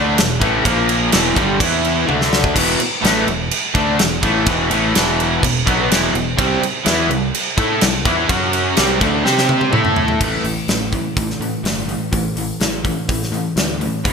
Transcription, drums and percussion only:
0.18 snare loud
0.18 crash medium
0.41 kick loud
0.41 crash medium
0.65 kick loud
0.65 crash medium
0.89 crash medium
1.12 snare loud
1.12 crash loud
1.36 kick loud
1.36 crash medium
1.60 kick loud
1.60 crash loud
1.85 crash medium
2.09 high tom medium
2.21 snare medium
2.33 snare loud
2.44 kick medium
2.56 kick loud
2.56 crash loud
2.56 crash medium
2.80 crash medium
3.04 snare loud
3.04 crash medium
3.28 crash medium
3.51 crash medium
3.75 kick loud
3.75 crash medium
3.99 snare loud
3.99 crash medium
4.23 kick loud
4.23 crash medium
4.46 kick loud
4.46 crash medium
4.71 crash medium
4.95 snare loud
4.95 crash medium
5.20 crash medium
5.43 kick loud
5.43 crash medium
5.67 kick loud
5.67 crash medium
5.91 snare loud
5.91 crash medium
6.15 crash medium
6.39 kick loud
6.39 crash medium
6.63 crash medium
6.86 snare loud
6.86 crash medium
7.11 crash medium
7.34 crash medium
7.58 kick loud
7.58 crash medium
7.81 snare loud
7.81 crash medium
8.05 kick loud
8.05 crash medium
8.29 kick loud
8.29 crash medium
8.53 crash medium
8.77 snare loud
8.77 crash medium
9.01 kick loud
9.01 crash medium
9.26 snare medium
9.38 snare medium
9.49 high tom medium
9.61 high tom medium
9.73 mid tom medium
9.85 mid tom medium
9.96 floor tom medium
10.08 floor tom loud
10.21 kick loud
10.21 crash medium
10.45 open hi-hat medium
10.68 snare loud
10.68 open hi-hat medium
10.92 kick medium
10.92 open hi-hat soft
11.17 kick loud
11.17 open hi-hat medium
11.30 snare soft
11.42 open hi-hat soft
11.65 snare loud
11.65 open hi-hat medium
11.89 open hi-hat medium
12.13 kick medium
12.13 open hi-hat medium
12.37 open hi-hat medium
12.61 snare loud
12.61 open hi-hat medium
12.85 kick medium
12.85 open hi-hat soft
13.09 kick loud
13.09 open hi-hat medium
13.23 snare soft
13.34 open hi-hat soft
13.57 snare loud
13.57 open hi-hat medium
13.81 open hi-hat soft
14.05 kick loud
14.05 open hi-hat medium

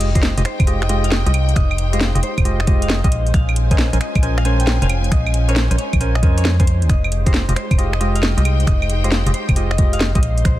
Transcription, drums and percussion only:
0.01 closed hi-hat loud
0.15 kick loud
0.15 closed hi-hat medium
0.23 snare loud
0.38 closed hi-hat medium
0.45 finger snap medium
0.45 closed hi-hat loud
0.60 kick loud
0.60 closed hi-hat soft
0.60 claves medium
0.67 closed hi-hat medium
0.82 finger snap medium
0.89 closed hi-hat loud
1.04 closed hi-hat medium
1.12 snare loud
1.27 closed hi-hat medium
1.34 closed hi-hat loud
1.34 claves medium
1.49 closed hi-hat soft
1.56 finger snap medium
1.56 kick loud
1.56 closed hi-hat medium
1.71 claves medium
1.78 closed hi-hat loud
1.93 closed hi-hat medium
2.01 snare loud
2.15 closed hi-hat medium
2.23 closed hi-hat loud
2.38 kick medium
2.38 closed hi-hat soft
2.38 claves medium
2.45 closed hi-hat medium
2.60 finger snap medium
2.67 kick loud
2.67 closed hi-hat loud
2.82 closed hi-hat medium
2.90 snare loud
3.04 kick loud
3.04 closed hi-hat medium
3.12 closed hi-hat loud
3.27 closed hi-hat soft
3.34 finger snap medium
3.34 kick loud
3.34 closed hi-hat medium
3.49 claves medium
3.56 closed hi-hat loud
3.71 kick loud
3.71 closed hi-hat medium
3.78 snare loud
3.93 closed hi-hat medium
4.01 finger snap medium
4.01 closed hi-hat medium
4.15 kick loud
4.15 closed hi-hat soft
4.15 claves medium
4.23 closed hi-hat medium
4.38 finger snap medium
4.45 closed hi-hat loud
4.60 closed hi-hat medium
4.67 snare loud
4.82 closed hi-hat medium
4.90 closed hi-hat medium
4.90 claves medium
5.04 closed hi-hat soft
5.12 finger snap medium
5.12 kick loud
5.12 closed hi-hat medium
5.27 claves medium
5.34 closed hi-hat loud
5.49 closed hi-hat medium
5.56 snare loud
5.71 closed hi-hat medium
5.78 closed hi-hat medium
5.93 kick medium
5.93 closed hi-hat soft
5.93 claves medium
6.01 closed hi-hat medium
6.15 finger snap medium
6.23 kick loud
6.23 closed hi-hat loud
6.38 closed hi-hat medium
6.45 snare loud
6.60 kick loud
6.60 closed hi-hat medium
6.67 closed hi-hat medium
6.82 closed hi-hat soft
6.89 finger snap medium
6.89 kick loud
6.89 closed hi-hat medium
7.04 claves medium
7.12 closed hi-hat loud
7.26 kick loud
7.26 closed hi-hat medium
7.34 snare loud
7.49 closed hi-hat medium
7.56 finger snap medium
7.56 closed hi-hat medium
7.71 kick loud
7.71 closed hi-hat soft
7.71 claves medium
7.79 closed hi-hat medium
7.93 finger snap medium
8.01 closed hi-hat loud
8.15 closed hi-hat medium
8.23 snare loud
8.38 closed hi-hat medium
8.45 closed hi-hat medium
8.45 claves medium
8.60 closed hi-hat soft
8.67 finger snap medium
8.67 kick loud
8.67 closed hi-hat medium
8.82 claves medium
8.90 closed hi-hat loud
9.04 closed hi-hat medium
9.12 snare loud
9.27 closed hi-hat medium
9.34 closed hi-hat medium
9.49 kick medium
9.49 closed hi-hat soft
9.49 claves medium
9.56 closed hi-hat medium
9.71 finger snap medium
9.78 kick loud
9.78 closed hi-hat loud
9.93 closed hi-hat medium
10.01 snare loud
10.15 kick loud
10.15 closed hi-hat medium
10.23 closed hi-hat medium
10.38 closed hi-hat soft
10.45 finger snap medium
10.45 kick loud
10.45 closed hi-hat medium

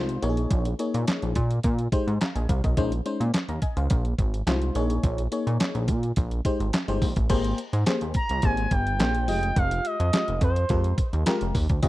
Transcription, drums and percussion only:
0.09 closed hi-hat medium
0.23 closed hi-hat medium
0.37 closed hi-hat medium
0.51 kick loud
0.51 closed hi-hat medium
0.65 closed hi-hat medium
0.79 closed hi-hat medium
0.94 closed hi-hat medium
1.07 snare loud
1.07 clap medium
1.07 closed hi-hat medium
1.22 closed hi-hat soft
1.35 kick medium
1.35 closed hi-hat medium
1.51 closed hi-hat soft
1.63 kick loud
1.63 closed hi-hat loud
1.79 closed hi-hat soft
1.92 kick medium
1.92 closed hi-hat medium
2.08 closed hi-hat soft
2.21 snare loud
2.21 clap medium
2.21 closed hi-hat medium
2.36 closed hi-hat medium
2.49 kick loud
2.49 closed hi-hat medium
2.64 kick medium
2.64 closed hi-hat medium
2.77 kick loud
2.77 closed hi-hat medium
2.92 closed hi-hat medium
3.06 closed hi-hat medium
3.21 closed hi-hat medium
3.34 snare loud
3.34 clap medium
3.34 closed hi-hat medium
3.49 closed hi-hat soft
3.62 kick medium
3.62 closed hi-hat medium
3.77 closed hi-hat medium
3.90 kick loud
3.90 closed hi-hat medium
4.05 closed hi-hat soft
4.19 kick medium
4.19 closed hi-hat medium
4.34 closed hi-hat soft
4.47 snare loud
4.47 clap medium
4.47 closed hi-hat medium
4.62 closed hi-hat medium
4.75 closed hi-hat medium
4.90 closed hi-hat medium
5.03 kick loud
5.03 closed hi-hat medium
5.18 closed hi-hat medium
5.32 closed hi-hat medium
5.47 closed hi-hat medium
5.60 snare loud
5.60 clap medium
5.60 closed hi-hat medium
5.75 closed hi-hat soft
5.88 kick medium
5.88 closed hi-hat medium
6.03 closed hi-hat soft
6.16 kick loud
6.16 closed hi-hat medium
6.31 closed hi-hat soft
6.45 kick medium
6.45 closed hi-hat medium
6.60 closed hi-hat soft
6.73 snare loud
6.73 clap medium
6.73 closed hi-hat medium
6.88 closed hi-hat medium
7.02 kick loud
7.02 open hi-hat medium
7.16 kick medium
7.16 closed hi-hat medium
7.30 kick loud
7.30 closed hi-hat medium
7.30 crash medium
7.44 closed hi-hat medium
7.58 closed hi-hat medium
7.73 closed hi-hat medium
7.86 snare loud
7.86 clap medium
7.86 closed hi-hat medium
8.01 closed hi-hat soft
8.14 kick medium
8.14 closed hi-hat medium
8.29 closed hi-hat medium
8.42 kick loud
8.42 closed hi-hat loud
8.57 closed hi-hat soft
8.71 kick medium
8.71 closed hi-hat medium
8.87 closed hi-hat soft
9.00 snare loud
9.00 clap medium
9.00 closed hi-hat loud
9.15 closed hi-hat medium
9.28 open hi-hat medium
9.43 closed hi-hat medium
9.56 kick loud
9.56 closed hi-hat medium
9.71 closed hi-hat medium
9.85 closed hi-hat medium
10.00 closed hi-hat medium
10.13 snare loud
10.13 clap medium
10.13 closed hi-hat medium
10.28 closed hi-hat soft
10.41 kick medium
10.41 closed hi-hat medium
10.56 closed hi-hat medium
10.69 kick loud
10.69 closed hi-hat medium
10.84 closed hi-hat soft
10.98 kick medium
10.98 closed hi-hat medium
11.13 closed hi-hat soft
11.26 snare loud
11.26 clap medium
11.26 closed hi-hat medium
11.41 closed hi-hat medium
11.55 kick loud
11.55 open hi-hat medium
11.69 kick medium
11.69 closed hi-hat medium
11.83 kick loud
11.83 closed hi-hat medium

